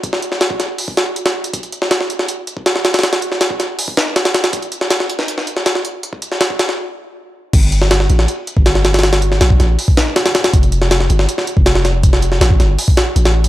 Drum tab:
CC |--------------------------------|--------------------------------|--------------------------------|--------------------------------|
HH |x---x---x---x---o---x---x-x---x-|x-x-x---x---x---x---x---x---x-xx|x-x-x---x---x---o---x---x-x-x-x-|x-x-x---x---x---x---x---x---x---|
SD |--o---o-o---o-------o-----o-----|------o-o-o---o---------o-o-o-oo|o-o---o-o---o-------o---o-o-o-o-|------o-o-o---o---o---o-o-o-----|
BD |o---------o-------o-------------|o---------------------o---------|----------o-------o-------------|o-------------------------------|

CC |--------------------------------|x-------------------------------|--------------------------------|--------------------------------|
HH |x---x---x---x-------------------|x-x-x---x---x---x---x---x---x-xx|x-x-x---x---x---o---x---x-x-x-x-|x-x-x---x---x---x---x---x---x---|
SD |------o-o---o-o-----------------|------o-o-o---o---------o-o-o-oo|o-o---o-o---o-------o---o-o-o-o-|------o-o-o---o---o-----o-o-o---|
BD |--o-------o---------------------|o---------------------o---------|----------o-------o-------------|o---------------------o---------|

CC |--------------------------------|
HH |x---x---x---x---o---x---x-x---x-|
SD |--o---o-o---o-------o-----o-----|
BD |o---------o-------o-------------|